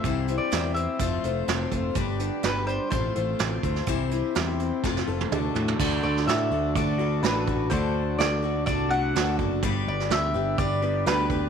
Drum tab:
CC |----------------|----------------|----------------|x---------------|
HH |x-x-x-x-x-x-x-x-|x-x-x-x-x-x-x-x-|x-x-x-x---------|----x---x---x---|
SD |----o-------o---|----o-------o--o|----o---oo------|---oo-------o---|
T1 |----------------|----------------|-----------o----|----------------|
T2 |----------------|----------------|------------o---|----------------|
FT |----------------|----------------|--------------oo|----------------|
BD |o-------o-----o-|o-------o-----o-|o-------o-------|o-------o-----o-|

CC |----------------|----------------|
HH |x---x---x---x---|x---x---x---x---|
SD |----o-------o---|---oo-------o---|
T1 |----------------|----------------|
T2 |----------------|----------------|
FT |----------------|----------------|
BD |o-------o-----o-|o-------o-----o-|